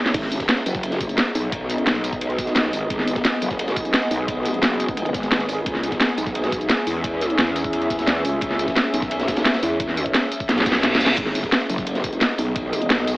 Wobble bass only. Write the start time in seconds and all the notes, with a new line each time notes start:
0.14 G#1
0.66 F#1
1.35 B1
1.87 B1
2.73 G#1
2.90 G#1
3.42 F#1
4.11 B1
4.63 F#1
5.14 G#1
5.66 C#2
6.18 B1
6.87 E2
7.39 E2
8.25 C#2
8.42 C#2
8.94 B1
9.63 E2
10.49 B1
11.01 C#2
11.18 G#1
11.70 F#1
12.39 B1
12.90 B1